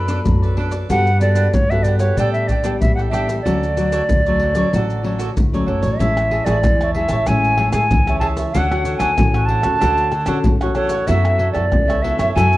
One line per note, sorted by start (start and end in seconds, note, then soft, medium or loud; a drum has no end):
0.00 0.17 F#2 medium
0.00 0.22 F#3 medium
0.00 0.58 B5 loud
0.08 0.52 B3 medium
0.08 0.52 D4 medium
0.08 0.18 D4 medium
0.08 0.52 A4 medium
0.08 0.19 A4 medium
0.08 0.19 B4 medium
0.08 0.19 D5 medium
0.08 pandeiro medium
0.08 maracas medium
0.24 0.81 F#2 medium
0.24 0.86 F#3 soft
0.24 pandeiro medium
0.24 maracas medium
0.24 surdo medium
0.42 0.56 A4 soft
0.42 0.58 B4 soft
0.42 0.57 D5 soft
0.42 pandeiro soft
0.42 maracas soft
0.57 0.84 B3 medium
0.57 0.72 D4 medium
0.57 0.85 D4 medium
0.57 0.73 A4 medium
0.57 0.85 A4 medium
0.57 0.72 B4 medium
0.57 0.70 D5 medium
0.57 pandeiro medium
0.71 0.89 A4 soft
0.71 0.88 B4 soft
0.71 0.88 D5 soft
0.71 pandeiro medium
0.71 maracas medium
0.89 1.44 G2 medium
0.89 1.51 G3 medium
0.89 1.09 B3 medium
0.89 1.20 D4 medium
0.89 1.09 F#4 medium
0.89 1.20 G4 medium
0.89 1.09 A4 medium
0.89 1.21 B4 medium
0.89 1.20 F#5 medium
0.89 1.22 F#5 medium
0.89 pandeiro medium
0.89 maracas medium
0.89 surdo soft
1.07 pandeiro soft
1.07 maracas soft
1.20 1.51 B3 soft
1.20 1.35 D4 soft
1.20 1.51 F#4 medium
1.20 1.35 G4 medium
1.20 1.52 A4 medium
1.20 1.35 B4 soft
1.20 1.55 D5 medium
1.20 1.35 F#5 medium
1.20 pandeiro soft
1.20 maracas medium
1.35 1.46 D4 medium
1.35 1.46 G4 medium
1.35 1.46 B4 medium
1.35 1.46 F#5 medium
1.35 pandeiro medium
1.35 maracas medium
1.53 2.08 G2 medium
1.53 2.14 D3 medium
1.53 1.71 C#5 medium
1.53 pandeiro medium
1.53 maracas medium
1.53 surdo medium
1.70 2.13 B3 medium
1.70 2.13 F#4 medium
1.70 1.84 G4 soft
1.70 2.14 A4 medium
1.70 1.85 B4 soft
1.70 1.84 E5 medium
1.70 1.85 F#5 soft
1.70 pandeiro soft
1.70 maracas soft
1.83 2.00 D4 soft
1.83 2.00 G4 soft
1.83 1.99 B4 soft
1.83 1.98 D5 medium
1.83 pandeiro medium
1.83 maracas medium
1.87 1.99 F#5 soft
1.99 2.16 G4 medium
1.99 2.16 B4 medium
1.99 2.19 C#5 medium
1.99 2.16 F#5 medium
1.99 pandeiro medium
1.99 maracas medium
2.17 2.71 A2 medium
2.17 2.78 A2 medium
2.17 2.47 G3 medium
2.17 2.48 B3 medium
2.17 2.47 D4 medium
2.17 2.48 D4 medium
2.17 2.48 A4 medium
2.17 2.32 D5 medium
2.17 2.49 D5 medium
2.17 2.49 G5 medium
2.17 pandeiro medium
2.17 maracas medium
2.17 surdo soft
2.33 2.49 E5 medium
2.33 pandeiro soft
2.33 maracas soft
2.47 2.63 D4 soft
2.47 2.63 A4 soft
2.47 2.79 D5 medium
2.47 2.63 D5 soft
2.47 2.64 G5 soft
2.47 pandeiro medium
2.47 maracas medium
2.47 surdo medium
2.64 3.08 G3 medium
2.64 3.08 B3 medium
2.64 2.74 D4 medium
2.64 3.08 D4 medium
2.64 2.74 A4 medium
2.64 2.74 D5 medium
2.64 2.74 G5 medium
2.64 pandeiro medium
2.64 maracas medium
2.80 3.36 A1 medium
2.80 3.42 E3 medium
2.80 2.94 E5 medium
2.80 pandeiro medium
2.80 maracas medium
2.80 surdo medium
2.95 3.12 D5 soft
2.95 3.01 F#5 medium
2.95 3.12 G5 soft
2.95 pandeiro soft
2.95 maracas soft
3.00 3.11 A4 soft
3.09 3.39 G3 medium
3.09 3.40 B3 soft
3.09 3.27 D4 medium
3.09 3.28 A4 medium
3.09 3.28 D5 medium
3.09 3.41 E5 medium
3.13 3.40 D4 medium
3.13 3.27 G5 medium
3.13 pandeiro medium
3.13 maracas medium
3.28 3.44 A4 soft
3.28 3.44 D5 soft
3.28 3.43 G5 soft
3.28 pandeiro medium
3.28 maracas medium
3.41 4.06 D3 medium
3.41 3.64 F#3 medium
3.41 3.75 F#4 medium
3.41 5.30 D5 medium
3.46 4.00 D2 medium
3.46 3.64 A3 medium
3.46 3.64 C#4 medium
3.46 3.76 A4 medium
3.46 3.77 D5 medium
3.46 pandeiro medium
3.46 maracas medium
3.46 surdo medium
3.63 pandeiro soft
3.63 maracas soft
3.76 4.20 F#3 medium
3.76 4.20 A3 soft
3.76 3.91 F#4 soft
3.76 3.91 A4 soft
3.76 3.92 C#5 medium
3.76 3.92 D5 soft
3.76 pandeiro medium
3.76 maracas medium
3.92 4.02 F#4 medium
3.92 4.02 A4 medium
3.92 4.02 C#5 medium
3.92 4.02 D5 medium
3.92 pandeiro medium
3.92 maracas medium
4.09 4.63 D2 medium
4.09 4.70 A2 soft
4.09 pandeiro medium
4.09 maracas medium
4.09 surdo medium
4.26 4.53 F#3 medium
4.26 4.53 A3 medium
4.26 4.53 C#4 medium
4.26 4.41 A4 soft
4.26 4.41 C#5 soft
4.26 4.40 D5 soft
4.26 pandeiro soft
4.26 maracas soft
4.40 4.56 F#4 soft
4.40 4.56 A4 soft
4.40 4.56 C#5 soft
4.40 pandeiro soft
4.44 4.54 D5 soft
4.55 4.67 F#3 medium
4.55 4.67 A3 medium
4.55 4.67 C#4 medium
4.55 4.72 A4 soft
4.55 4.72 C#5 medium
4.55 4.71 D5 medium
4.55 pandeiro medium
4.55 maracas medium
4.72 5.27 A1 medium
4.72 5.33 D3 medium
4.72 5.00 F#3 medium
4.72 4.99 A3 soft
4.72 5.00 C#4 medium
4.72 5.03 F#4 medium
4.72 5.04 A4 medium
4.72 pandeiro medium
4.72 maracas medium
4.72 surdo medium
4.77 5.06 D5 medium
4.90 pandeiro soft
4.90 maracas soft
5.03 5.34 F#3 medium
5.03 5.34 A3 soft
5.03 5.34 C#4 medium
5.03 5.17 F#4 soft
5.03 5.19 A4 soft
5.03 5.19 C#5 soft
5.03 5.19 D5 soft
5.03 pandeiro medium
5.19 5.29 F#4 medium
5.19 5.29 A4 medium
5.19 5.29 C#5 medium
5.19 5.29 D5 medium
5.19 pandeiro medium
5.19 maracas medium
5.36 5.64 D2 medium
5.36 5.97 A2 medium
5.36 pandeiro medium
5.36 maracas medium
5.36 surdo medium
5.53 5.95 F#3 medium
5.53 5.96 A3 medium
5.53 5.96 C#4 medium
5.53 5.66 A4 soft
5.53 5.67 C#5 soft
5.53 5.68 D5 soft
5.53 pandeiro soft
5.53 maracas soft
5.66 5.82 F#1 medium
5.66 5.82 F#4 medium
5.66 5.82 A4 medium
5.66 6.00 C#5 medium
5.66 5.81 C#5 medium
5.66 5.80 D5 medium
5.66 pandeiro medium
5.81 5.97 A1 medium
5.81 5.98 A4 soft
5.81 5.98 C#5 soft
5.81 5.97 D5 soft
5.81 pandeiro medium
5.81 maracas medium
5.99 6.41 A1 medium
5.99 6.60 A2 medium
5.99 6.43 G#3 medium
5.99 6.43 C#4 medium
5.99 6.43 E4 medium
5.99 6.30 C#5 medium
5.99 6.46 E5 medium
5.99 6.30 E5 medium
5.99 6.31 A5 medium
5.99 pandeiro medium
5.99 maracas medium
5.99 surdo medium
6.17 pandeiro soft
6.17 tamborim medium
6.17 maracas soft
6.31 6.46 G#4 soft
6.31 6.47 C#5 soft
6.31 6.47 E5 medium
6.31 6.47 A5 medium
6.31 pandeiro medium
6.45 6.61 A1 medium
6.45 6.89 G#3 medium
6.45 6.90 E4 medium
6.45 6.56 G#4 medium
6.45 6.57 C#5 medium
6.45 6.93 D5 medium
6.45 6.57 E5 medium
6.45 6.57 A5 medium
6.45 pandeiro medium
6.45 tamborim medium
6.45 maracas medium
6.64 7.04 E2 medium
6.64 7.24 E3 medium
6.64 pandeiro medium
6.64 tamborim medium
6.64 maracas medium
6.64 surdo loud
6.81 6.95 C#5 soft
6.81 6.95 E5 soft
6.81 6.95 A5 soft
6.81 pandeiro soft
6.81 tamborim medium
6.81 maracas soft
6.94 7.15 G#3 medium
6.94 7.15 C#4 medium
6.94 7.15 E4 medium
6.94 7.10 G#4 soft
6.94 7.10 C#5 medium
6.94 7.29 E5 medium
6.94 7.10 E5 soft
6.94 7.09 A5 medium
6.94 pandeiro medium
7.09 7.24 A1 medium
7.09 7.26 C#5 medium
7.09 7.26 E5 medium
7.09 7.26 A5 medium
7.09 pandeiro medium
7.09 tamborim medium
7.09 maracas medium
7.26 7.68 A1 medium
7.26 7.89 A2 medium
7.26 7.55 G#3 medium
7.26 7.55 C#4 medium
7.26 7.55 E4 medium
7.26 7.58 C#5 medium
7.26 7.59 E5 medium
7.26 7.72 G#5 medium
7.26 pandeiro medium
7.26 tamborim medium
7.26 maracas medium
7.26 surdo medium
7.44 pandeiro soft
7.44 maracas soft
7.58 7.89 G#3 medium
7.58 7.89 C#4 medium
7.58 7.90 E4 medium
7.58 7.71 G#4 soft
7.58 7.72 C#5 soft
7.58 7.72 E5 soft
7.58 7.73 A5 soft
7.58 pandeiro medium
7.58 tamborim medium
7.72 7.88 A2 medium
7.72 7.83 G#4 medium
7.72 7.83 C#5 medium
7.72 7.83 E5 medium
7.72 8.18 G#5 medium
7.72 7.83 A5 medium
7.72 pandeiro medium
7.72 tamborim medium
7.72 maracas medium
7.91 8.45 C#2 medium
7.91 8.52 E3 medium
7.91 pandeiro medium
7.91 maracas medium
7.91 surdo loud
8.07 8.50 G#3 medium
8.07 8.51 C#4 medium
8.07 8.51 E4 medium
8.07 8.20 C#5 soft
8.07 8.21 E5 soft
8.07 8.22 A5 soft
8.07 pandeiro soft
8.07 tamborim medium
8.07 maracas soft
8.20 8.37 G#4 medium
8.20 8.37 C#5 medium
8.20 8.37 E5 medium
8.20 8.27 A5 medium
8.20 8.35 A5 medium
8.20 pandeiro medium
8.20 tamborim medium
8.37 8.54 C#5 soft
8.37 8.53 E5 soft
8.37 8.52 A5 soft
8.37 pandeiro medium
8.37 maracas medium
8.52 8.96 D2 medium
8.52 9.16 D3 medium
8.52 8.66 C#4 medium
8.52 8.83 D4 medium
8.52 8.83 A4 medium
8.52 8.84 C#5 medium
8.52 8.97 F#5 medium
8.52 pandeiro medium
8.52 maracas medium
8.52 surdo medium
8.56 8.66 F#4 medium
8.56 8.66 A4 medium
8.56 8.85 F#5 medium
8.71 9.14 C#4 medium
8.71 9.14 F#4 medium
8.71 9.14 A4 medium
8.71 pandeiro soft
8.71 tamborim medium
8.71 maracas soft
8.84 8.98 D4 soft
8.84 8.99 A4 medium
8.84 8.99 C#5 medium
8.84 9.00 F#5 medium
8.84 pandeiro medium
8.84 maracas medium
8.98 9.15 D2 medium
8.98 9.10 D4 medium
8.98 9.10 A4 medium
8.98 9.10 C#5 medium
8.98 9.11 F#5 medium
8.98 9.47 G#5 medium
8.98 pandeiro medium
8.98 tamborim medium
8.98 maracas medium
9.18 9.59 A1 medium
9.18 9.79 A2 medium
9.18 9.61 C#4 soft
9.18 9.61 F#4 medium
9.18 9.61 A4 medium
9.18 pandeiro medium
9.18 tamborim medium
9.18 maracas medium
9.18 surdo loud
9.34 9.48 A4 soft
9.34 9.48 C#5 soft
9.34 9.49 F#5 medium
9.34 pandeiro soft
9.34 tamborim medium
9.34 maracas soft
9.46 9.64 D4 soft
9.46 9.64 A4 soft
9.46 9.62 C#5 soft
9.46 10.48 A5 loud
9.46 pandeiro medium
9.50 9.61 F#5 soft
9.62 9.79 D2 medium
9.62 9.76 C#4 medium
9.62 9.76 F#4 medium
9.62 9.80 A4 medium
9.62 9.76 A4 medium
9.62 9.80 C#5 medium
9.62 9.79 F#5 medium
9.62 pandeiro medium
9.62 tamborim medium
9.62 maracas medium
9.80 10.23 D2 medium
9.80 10.42 D3 medium
9.80 10.11 C#4 medium
9.80 10.11 D4 medium
9.80 10.12 F#4 medium
9.80 10.11 A4 medium
9.80 10.12 A4 medium
9.80 10.12 C#5 medium
9.80 10.12 F#5 medium
9.80 pandeiro medium
9.80 tamborim medium
9.80 maracas medium
9.80 surdo medium
9.98 pandeiro soft
9.98 maracas soft
10.12 10.25 D4 soft
10.12 10.26 A4 medium
10.12 10.26 C#5 medium
10.12 10.27 F#5 soft
10.12 pandeiro medium
10.12 tamborim medium
10.12 maracas medium
10.26 10.42 D3 medium
10.26 10.55 C#4 medium
10.26 10.37 D4 medium
10.26 10.55 F#4 medium
10.26 10.37 A4 medium
10.26 10.56 A4 medium
10.26 10.38 C#5 medium
10.26 10.38 F#5 medium
10.26 pandeiro medium
10.26 tamborim medium
10.26 maracas medium
10.44 11.00 E2 medium
10.44 11.06 A2 medium
10.44 pandeiro medium
10.44 maracas medium
10.44 surdo loud
10.61 11.07 C#4 medium
10.61 11.07 F#4 medium
10.61 11.07 A4 medium
10.61 10.75 A4 soft
10.61 10.75 C#5 soft
10.61 10.76 F#5 medium
10.61 pandeiro soft
10.61 tamborim medium
10.61 maracas soft
10.74 10.91 D4 medium
10.74 10.91 A4 medium
10.74 11.09 C#5 medium
10.74 10.91 C#5 medium
10.74 10.90 F#5 medium
10.74 pandeiro medium
10.74 tamborim medium
10.74 maracas medium
10.89 11.08 A4 soft
10.89 11.07 C#5 soft
10.89 11.07 F#5 medium
10.89 pandeiro medium
10.89 maracas medium
11.07 11.50 F#2 medium
11.07 11.69 F#3 medium
11.07 11.39 B3 medium
11.07 11.39 E4 medium
11.07 11.37 F#4 medium
11.07 11.37 A4 medium
11.07 11.39 A4 medium
11.07 11.39 C#5 medium
11.07 11.51 E5 medium
11.07 11.39 E5 medium
11.07 pandeiro medium
11.07 maracas medium
11.07 surdo medium
11.25 pandeiro soft
11.25 tamborim medium
11.25 maracas soft
11.38 11.52 F#4 soft
11.38 11.52 A4 medium
11.38 11.53 C#5 medium
11.38 11.54 E5 medium
11.38 pandeiro medium
11.52 11.70 F#2 medium
11.52 11.99 B3 medium
11.52 11.64 F#4 medium
11.52 11.64 A4 medium
11.52 11.65 C#5 medium
11.52 12.04 D5 loud
11.52 11.65 E5 medium
11.52 pandeiro medium
11.52 tamborim medium
11.52 maracas medium
11.56 11.99 E4 medium
11.56 11.99 A4 medium
11.72 12.14 C#2 medium
11.72 12.34 C#3 medium
11.72 pandeiro medium
11.72 tamborim medium
11.72 maracas medium
11.72 surdo loud
11.88 12.02 A4 soft
11.88 12.03 C#5 soft
11.88 12.03 E5 medium
11.88 pandeiro soft
11.88 tamborim medium
11.88 maracas soft
12.02 12.31 B3 medium
12.02 12.32 E4 medium
12.02 12.18 F#4 soft
12.02 12.19 A4 medium
12.02 12.32 A4 medium
12.02 12.18 C#5 soft
12.02 12.34 E5 medium
12.02 12.17 E5 medium
12.02 pandeiro medium
12.18 12.33 F#2 medium
12.18 12.34 A4 medium
12.18 12.35 C#5 medium
12.18 12.34 E5 medium
12.18 pandeiro medium
12.18 tamborim medium
12.18 maracas medium
12.34 12.57 F#2 medium
12.34 12.57 F#3 medium
12.34 12.57 B3 medium
12.34 12.57 E4 medium
12.34 12.57 F#4 medium
12.34 12.57 A4 medium
12.34 12.57 C#5 medium
12.34 12.57 E5 medium
12.34 12.57 G#5 loud
12.34 pandeiro medium
12.34 tamborim medium
12.34 maracas medium
12.34 surdo medium
12.53 pandeiro soft
12.53 maracas soft